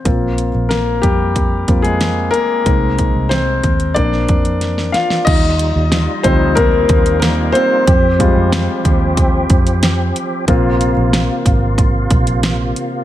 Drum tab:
CC |----------------|----------------|x---------------|----------------|
HH |x-x-x-x-x-xxx-x-|x-x-x-xxx-xxx-x-|x-x-x-x-x-xxx-x-|x-x-x-x-x-xxx-x-|
SD |----o-------o---|----o----o--oooo|----o-------o---|----o-------o---|
BD |o-----o-o-o-----|o-o---o-o-o-----|o-----o-o-o-----|o-o---o-o-o-----|

CC |----------------|
HH |x-x-x-x-x-xxx-x-|
SD |----o-------o---|
BD |o-----o-o-o-----|